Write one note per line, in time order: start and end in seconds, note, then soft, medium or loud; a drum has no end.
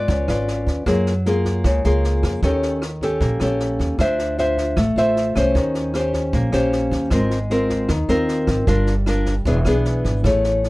0.00 0.26 F4 medium
0.00 0.26 B4 medium
0.00 0.26 D5 medium
0.08 0.27 C#2 loud
0.08 0.86 C#4 soft
0.08 kick medium
0.08 snare soft
0.28 0.64 G#1 medium
0.28 0.84 F4 medium
0.28 0.84 B4 medium
0.28 0.85 D5 medium
0.28 cross-stick medium
0.28 snare soft
0.48 snare soft
0.66 0.85 D#2 medium
0.66 kick soft
0.66 snare soft
0.86 1.61 F#2 medium
0.86 1.63 F#3 medium
0.86 1.12 A#3 soft
0.86 1.12 F4 soft
0.86 1.12 G#4 medium
0.86 kick soft
0.86 cross-stick medium
0.86 snare soft
1.06 snare soft
1.26 1.82 A#3 medium
1.26 1.82 F4 medium
1.26 1.82 G#4 medium
1.26 snare soft
1.45 kick soft
1.45 snare soft
1.64 1.83 C#2 loud
1.64 2.41 C#3 medium
1.64 kick medium
1.64 cross-stick medium
1.64 snare soft
1.84 2.21 C#2 medium
1.84 2.40 A#3 medium
1.84 2.40 F4 medium
1.84 2.41 G#4 medium
1.84 snare soft
2.04 snare soft
2.23 2.41 F2 medium
2.23 kick soft
2.23 cross-stick medium
2.23 snare soft
2.42 3.17 D#2 medium
2.42 3.20 D#3 soft
2.42 2.82 C#4 medium
2.42 2.83 G4 soft
2.42 2.83 A4 soft
2.42 kick medium
2.42 snare soft
2.62 snare soft
2.82 cross-stick medium
2.82 snare soft
3.01 3.38 C#4 medium
3.01 3.38 G4 medium
3.01 3.39 A4 medium
3.01 kick soft
3.01 snare soft
3.21 3.39 A#1 medium
3.21 3.98 A#3 medium
3.21 kick medium
3.21 snare soft
3.40 3.77 A#1 medium
3.40 3.97 C#4 medium
3.40 3.97 G4 medium
3.40 3.97 A4 medium
3.40 cross-stick medium
3.40 snare soft
3.60 snare soft
3.79 3.98 D#2 medium
3.79 kick soft
3.79 snare soft
3.98 4.73 D2 medium
3.98 4.76 D4 soft
3.98 4.35 F4 medium
3.98 4.36 C5 medium
3.98 4.36 E5 medium
3.98 kick medium
3.98 cross-stick medium
3.98 snare soft
4.19 snare soft
4.38 4.77 F4 medium
4.38 4.78 C5 medium
4.38 4.78 E5 medium
4.38 snare soft
4.57 kick soft
4.57 snare soft
4.77 4.95 A1 medium
4.77 5.54 A3 medium
4.77 kick medium
4.77 cross-stick medium
4.77 snare soft
4.96 5.33 A1 medium
4.96 5.33 F4 medium
4.96 5.33 C5 medium
4.96 5.34 E5 medium
4.96 snare soft
5.16 snare soft
5.36 5.54 C2 medium
5.36 5.92 C#4 medium
5.36 5.92 G4 medium
5.36 5.92 C5 medium
5.36 kick soft
5.36 cross-stick medium
5.36 snare soft
5.55 6.29 D#2 medium
5.55 6.32 D#3 medium
5.55 kick medium
5.55 snare soft
5.74 snare soft
5.94 6.50 C#4 medium
5.94 6.51 G4 medium
5.94 6.51 C5 medium
5.94 cross-stick medium
5.94 snare soft
6.13 kick soft
6.13 snare soft
6.33 6.52 A#1 loud
6.33 7.10 A#3 medium
6.33 kick medium
6.33 snare soft
6.52 6.90 A#1 medium
6.52 7.10 C#4 medium
6.52 7.10 G4 medium
6.52 7.10 C5 medium
6.52 cross-stick medium
6.52 snare soft
6.72 snare soft
6.91 7.10 D#2 medium
6.91 kick soft
6.91 snare soft
7.10 7.86 G#1 medium
7.10 7.88 G#3 medium
7.10 7.37 C4 medium
7.10 7.37 F4 medium
7.10 7.38 A#4 medium
7.10 kick medium
7.10 cross-stick medium
7.10 snare soft
7.30 snare soft
7.50 7.90 C4 medium
7.50 7.90 F4 medium
7.50 7.90 A#4 medium
7.50 snare soft
7.69 kick soft
7.69 snare soft
7.89 8.08 D#2 loud
7.89 8.66 D#3 medium
7.89 kick medium
7.89 cross-stick medium
7.89 snare soft
8.08 8.45 D#2 medium
8.08 8.65 C4 medium
8.08 8.65 F4 medium
8.08 8.65 A#4 medium
8.08 snare soft
8.28 snare soft
8.47 8.66 G#1 medium
8.47 kick soft
8.47 cross-stick medium
8.47 snare soft
8.67 9.42 G1 medium
8.67 9.44 G3 soft
8.67 8.93 D4 medium
8.67 8.93 F4 medium
8.67 8.93 A#4 medium
8.67 kick medium
8.67 snare soft
8.86 snare soft
9.06 9.33 D4 medium
9.06 9.34 F4 medium
9.06 9.34 A#4 medium
9.06 cross-stick medium
9.06 snare soft
9.26 kick soft
9.26 snare soft
9.45 9.64 E1 medium
9.45 10.23 E3 medium
9.45 9.58 B3 medium
9.45 9.58 D4 medium
9.45 9.59 G#4 medium
9.45 kick medium
9.45 snare soft
9.64 10.01 B1 medium
9.64 10.22 B3 medium
9.64 10.22 D4 medium
9.64 10.22 G#4 medium
9.64 cross-stick medium
9.64 snare soft
9.85 snare soft
10.04 10.23 G#1 medium
10.04 kick soft
10.04 snare soft
10.24 10.69 A1 medium
10.24 10.69 A3 medium
10.24 10.69 E4 soft
10.24 10.69 G#4 soft
10.24 10.69 C#5 soft
10.24 kick soft
10.24 cross-stick medium
10.24 snare soft
10.44 snare soft
10.63 snare soft